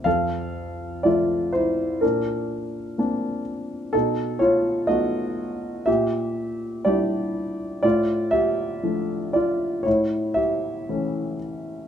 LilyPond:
<<
  \new Staff \with { instrumentName = "Grand piano" } { \time 4/4 \key d \minor \tempo 4 = 61 <a' f''>4 <f' d''>8 <e' c''>8 <d' bes'>4. r8 | <dis' a'>8 <f' cis''>8 <fis' dis''>4 <g' e''>4 <g' d''>4 | <f' d''>8 <g' e''>4 <f' d''>8 <e' cis''>8 <g' e''>4 r8 | }
  \new Staff \with { instrumentName = "Grand piano" } { \time 4/4 \key d \minor f,4 <f a e''>4 bes,4 <bes c' d'>4 | b,4 <a b dis'>4 bes,4 <g d' e'>4 | a,4 <f a d'>4 a,4 <e a cis'>4 | }
>>